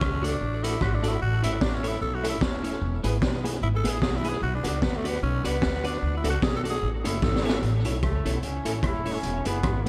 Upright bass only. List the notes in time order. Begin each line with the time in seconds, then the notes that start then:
0.02 C#2
0.41 A1
0.81 G#1
1.21 A1
1.43 G#1
1.61 A1
2.01 B1
2.41 D#1
2.82 E1
3.04 G#1
3.22 B1
3.62 G#1
3.84 A1
4.02 B1
4.42 B1
4.65 C#2
4.82 D2
5.22 B1
5.45 C#2
5.62 D2
6.02 D2
6.24 C#2
6.42 B1
6.83 A1
7.05 F#1
7.22 G#1
7.62 A1
7.85 B1
8.03 C#2
8.25 B1
8.65 A1
8.83 D#1
9.23 E1
9.46 F#1
9.64 G#1